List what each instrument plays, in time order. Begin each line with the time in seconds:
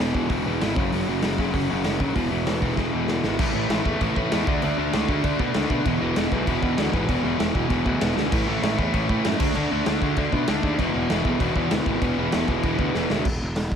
Already playing: distorted electric guitar B3
0.00 picked electric bass E1, distorted electric guitar E2 B2 E3
0.14 picked electric bass E1, distorted electric guitar E2 B2 E3, kick
0.30 picked electric bass E1, distorted electric guitar E2 B2 E3, kick, open hi-hat
0.46 picked electric bass E1, distorted electric guitar E2 B2 E3
0.61 picked electric bass G#1, distorted electric guitar E2 B2 E3, snare, open hi-hat
0.76 picked electric bass F#1, distorted electric guitar F#2 C#3 F#3, kick
0.92 picked electric bass F#1, distorted electric guitar F#2 C#3 F#3, open hi-hat
1.08 picked electric bass F#1, distorted electric guitar F#2 C#3 F#3
1.22 picked electric bass F#1, distorted electric guitar F#2 C#3 F#3, snare, open hi-hat
1.38 picked electric bass F#1, distorted electric guitar F#2 C#3 F#3, kick
1.54 picked electric bass F#1, distorted electric guitar F#2 C#3 F#3, kick, open hi-hat
1.70 picked electric bass F#1, distorted electric guitar F#2 C#3 F#3
1.84 picked electric bass F#1, distorted electric guitar F#2 C#3 F#3, snare, open hi-hat
2.00 picked electric bass A#1, distorted electric guitar F#2 C#3 F#3, kick
2.14 picked electric bass E1, distorted electric guitar E2 B2 E3, kick, open hi-hat
2.30 picked electric bass E1, distorted electric guitar E2 B2 E3
2.45 picked electric bass E1, distorted electric guitar E2 B2 E3, snare, open hi-hat
2.61 picked electric bass E1, distorted electric guitar E2 B2 E3, kick
2.77 picked electric bass E1, distorted electric guitar E2 B2 E3, kick, snare
2.93 picked electric bass E1, distorted electric guitar E2 B2 E3
3.08 picked electric bass E1, distorted electric guitar E2 B2 E3, snare
3.24 picked electric bass G#1, distorted electric guitar E2 B2 E3, snare
3.39 picked electric bass A1, distorted electric guitar A2 E3 A3, kick, crash
3.54 picked electric bass A1, distorted electric guitar A2 E3 A3
3.70 picked electric bass A1, distorted electric guitar A2 E3 A3, snare, crash
3.85 picked electric bass E2, distorted electric guitar A2 E3 A3, kick
4.00 picked electric bass A1, distorted electric guitar A2 E3 A3, kick, crash
4.16 picked electric bass A2, distorted electric guitar A2 E3 A3, kick
4.32 picked electric bass E2, distorted electric guitar A2 E3 A3, snare, crash
4.47 picked electric bass D2, distorted electric guitar D3 A3 D4, kick
4.62 picked electric bass D2, distorted electric guitar D3 A3 D4, crash
4.78 picked electric bass D2, distorted electric guitar D3 A3 D4
4.93 picked electric bass D2, distorted electric guitar D3 A3 D4, snare, crash
5.09 picked electric bass D2, distorted electric guitar D3 A3 D4, kick
5.24 picked electric bass D2, distorted electric guitar D3 A3 D4, kick, crash
5.39 picked electric bass B2, distorted electric guitar D3 A3 D4, kick
5.54 picked electric bass D2, distorted electric guitar D3 A3 D4, snare, crash
5.70 picked electric bass B2, distorted electric guitar D3 A3 D4, kick
5.86 picked electric bass E1, distorted electric guitar E2 B2 E3, kick, crash
6.01 picked electric bass E1, distorted electric guitar E2 B2 E3
6.16 picked electric bass E1, distorted electric guitar E2 B2 E3, snare, crash
6.32 picked electric bass B1, distorted electric guitar E2 B2 E3, kick
6.47 picked electric bass E1, distorted electric guitar E2 B2 E3, kick, crash
6.62 distorted electric guitar E2 B2 E3, picked electric bass E2, kick
6.78 picked electric bass D2, distorted electric guitar E2 B2 E3, snare, crash
6.93 picked electric bass G#1, distorted electric guitar E2 B2 E3, kick
7.09 picked electric bass E1, distorted electric guitar E2 B2 E3, kick, crash
7.24 picked electric bass E1, distorted electric guitar E2 B2 E3
7.39 picked electric bass E1, distorted electric guitar E2 B2 E3, snare, crash
7.54 picked electric bass E1, distorted electric guitar E2 B2 E3, kick
7.69 picked electric bass E1, distorted electric guitar E2 B2 E3, kick, crash
7.85 picked electric bass D2, distorted electric guitar E2 B2 E3, kick
8.00 picked electric bass E1, distorted electric guitar E2 B2 E3, snare, crash
8.16 picked electric bass D2, distorted electric guitar E2 B2 E3, snare
8.31 picked electric bass A1, distorted electric guitar A2 E3 A3, kick, crash
8.48 picked electric bass A1, distorted electric guitar A2 E3 A3
8.63 picked electric bass A1, distorted electric guitar A2 E3 A3, snare, crash
8.79 picked electric bass E2, distorted electric guitar A2 E3 A3, kick
8.93 picked electric bass A1, distorted electric guitar A2 E3 A3, kick, crash
9.09 picked electric bass A2, distorted electric guitar A2 E3 A3, kick
9.24 picked electric bass F#2, distorted electric guitar A2 E3 A3, snare, crash
9.40 picked electric bass D2, distorted electric guitar D3 A3 D4, kick, crash
9.55 picked electric bass D2, distorted electric guitar D3 A3 D4, crash
9.71 picked electric bass D2, distorted electric guitar D3 A3 D4
9.86 picked electric bass D2, distorted electric guitar D3 A3 D4, snare, crash
10.01 picked electric bass D2, distorted electric guitar D3 A3 D4, kick
10.16 picked electric bass D2, distorted electric guitar D3 A3 D4, kick, crash
10.32 picked electric bass B2, distorted electric guitar D3 A3 D4, kick
10.47 picked electric bass D2, distorted electric guitar D3 A3 D4, snare, crash
10.63 picked electric bass D#2, distorted electric guitar D3 A3 D4, kick
10.78 picked electric bass E1, distorted electric guitar E2 B2 E3, kick, crash
10.94 picked electric bass E1, distorted electric guitar E2 B2 E3
11.09 picked electric bass E1, distorted electric guitar E2 B2 E3, snare, crash
11.25 picked electric bass B1, distorted electric guitar E2 B2 E3, kick
11.40 picked electric bass E1, distorted electric guitar E2 B2 E3, kick, crash
11.56 picked electric bass E2, distorted electric guitar E2 B2 E3, kick
11.71 picked electric bass D2, distorted electric guitar E2 B2 E3, snare, crash
11.86 picked electric bass G#1, distorted electric guitar E2 B2 E3, kick
12.02 picked electric bass E1, distorted electric guitar E2 B2 E3, kick, crash
12.18 picked electric bass E1, distorted electric guitar E2 B2 E3
12.32 picked electric bass E1, distorted electric guitar E2 B2 E3, snare, crash
12.48 picked electric bass E1, distorted electric guitar E2 B2 E3, kick
12.63 picked electric bass E1, distorted electric guitar E2 B2 E3, kick, crash
12.79 picked electric bass D2, distorted electric guitar E2 B2 E3, kick
12.95 picked electric bass E1, distorted electric guitar E2 B2 E3, snare
13.10 picked electric bass D2, distorted electric guitar E2 B2 E3, snare
13.25 picked electric bass E1, kick, crash
13.42 picked electric bass E1
13.56 picked electric bass E1, snare, open hi-hat
13.72 picked electric bass E1, kick